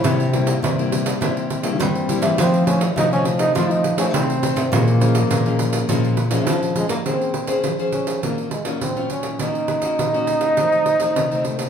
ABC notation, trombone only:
X:1
M:4/4
L:1/16
Q:1/4=103
K:Bbm
V:1 name="Trombone"
=E2 z8 z2 C4 | C2 D2 E D2 E F E2 D C4 | B,12 z2 A, B, | C4 z2 D2 B,2 A, B, C2 D2 |
E12- E2 =A, B, |]